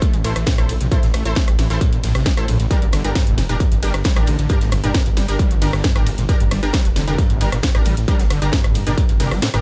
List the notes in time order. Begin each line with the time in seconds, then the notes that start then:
0.01 A3, kick, closed hi-hat
0.14 A1 G3, closed hi-hat
0.24 A1 E3 E4 A4 C5, snare, closed hi-hat, open hi-hat, ride
0.36 A1 E3, cross-stick, closed hi-hat
0.46 A2, kick, snare, closed hi-hat
0.58 A#1 A#2 E4 A4 C5, cross-stick, closed hi-hat
0.69 A#1 A2, closed hi-hat, open hi-hat, ride
0.81 A#1 C3, closed hi-hat
0.92 A2 E4 A4 C5, kick, closed hi-hat
1.03 A1 A2, snare, closed hi-hat
1.14 A1 A3, cross-stick, closed hi-hat, open hi-hat, ride
1.25 A1 E4 A4 C5, closed hi-hat
1.35 A3, kick, snare, closed hi-hat
1.48 A1 G3, cross-stick, closed hi-hat
1.59 A1 E3, snare, closed hi-hat, open hi-hat, ride
1.70 A1 E3 E4 A4 C5, snare, closed hi-hat
1.81 A2, kick, closed hi-hat
1.93 A1 A#2, closed hi-hat
2.03 A#1 A2, snare, open hi-hat, ride
2.15 A1 C3, cross-stick, open hi-hat
2.26 A3, kick, snare, closed hi-hat
2.37 A1 A2 E4 A4 C5, cross-stick, closed hi-hat
2.48 A#1 A2, closed hi-hat, open hi-hat, ride
2.60 A1 A2, closed hi-hat
2.71 G3 D4 G4 A#4, kick, closed hi-hat
2.82 G1 F3, closed hi-hat
2.92 G1 D3, cross-stick, snare, closed hi-hat, open hi-hat, ride
3.04 G1 D3 D4 G4 A#4, closed hi-hat
3.15 G2, kick, snare, closed hi-hat
3.27 F1 A2, closed hi-hat
3.38 F1 G2, snare, closed hi-hat, open hi-hat, ride
3.49 F1 A#2 D4 G4 A#4, closed hi-hat
3.60 G2, kick, closed hi-hat
3.72 G1 G2, closed hi-hat
3.83 G1 G3 D4 G4 A#4, snare, closed hi-hat, open hi-hat, ride
3.94 G1, cross-stick, closed hi-hat
4.04 G3, kick, snare, closed hi-hat
4.16 A1 F3 D4 G4 A#4, cross-stick, closed hi-hat
4.26 A1 D3, closed hi-hat, open hi-hat, ride
4.39 A1 D3, closed hi-hat
4.49 G2 D4 G4 A#4, kick, closed hi-hat
4.61 G1 A2, snare, closed hi-hat
4.72 G1 G2, cross-stick, closed hi-hat, open hi-hat, ride
4.84 G1 A#2 D4 G4 A#4, closed hi-hat
4.94 G2, kick, snare, closed hi-hat
5.06 G1 G2, closed hi-hat
5.17 G1 G3, snare, closed hi-hat, open hi-hat, ride
5.28 G1 D4 G4 A#4, snare, closed hi-hat
5.39 G3, kick, closed hi-hat
5.51 G1 F3, closed hi-hat
5.61 G1 D3 D4 G4 A#4, snare, open hi-hat, ride
5.73 G1 D3, cross-stick, open hi-hat
5.84 G2, kick, snare, closed hi-hat
5.96 G1 A2 D4 G4 A#4, cross-stick, closed hi-hat
6.06 G1 G2, closed hi-hat, open hi-hat, ride
6.18 G1 A#2, closed hi-hat
6.29 G2 D4 G4 A#4, kick, closed hi-hat
6.40 G1 G2, closed hi-hat
6.51 G1 G3, cross-stick, snare, closed hi-hat, open hi-hat, ride
6.63 G1 D4 G4 A#4, closed hi-hat
6.73 G3, kick, snare, closed hi-hat
6.85 F1 F3, closed hi-hat
6.96 F1 D3, snare, closed hi-hat, open hi-hat, ride
7.08 F1 D3 D4 G4 A#4, closed hi-hat
7.18 G2, kick, closed hi-hat
7.30 G1 A2, closed hi-hat
7.41 G1 G2 D4 G4 A#4, snare, closed hi-hat, open hi-hat, ride
7.52 G1 A#2, cross-stick, closed hi-hat
7.63 G2, kick, snare, closed hi-hat
7.74 A1 G2 D4 G4 A#4, cross-stick, closed hi-hat
7.85 A1 G3, closed hi-hat, open hi-hat, ride
7.97 A1, closed hi-hat
8.08 G3 D4 G4 A#4, kick, closed hi-hat
8.19 G1 F3, snare, closed hi-hat
8.30 G1 D3, cross-stick, closed hi-hat, open hi-hat, ride
8.42 G1 D3 D4 G4 A#4, closed hi-hat
8.52 G2, kick, snare, closed hi-hat
8.64 G1 A2, cross-stick, closed hi-hat
8.74 G1 G2, closed hi-hat, open hi-hat, ride
8.87 G1 A#2 D4 G4 A#4, snare, closed hi-hat
8.98 G2, kick, closed hi-hat
9.09 G1 G2, closed hi-hat
9.20 G1 C3 D4 G4 A#4, snare, open hi-hat, ride
9.31 G1 G3, cross-stick, open hi-hat
9.42 A2, snare, closed hi-hat
9.54 G1 A2 D4 G4 A#4, cross-stick, closed hi-hat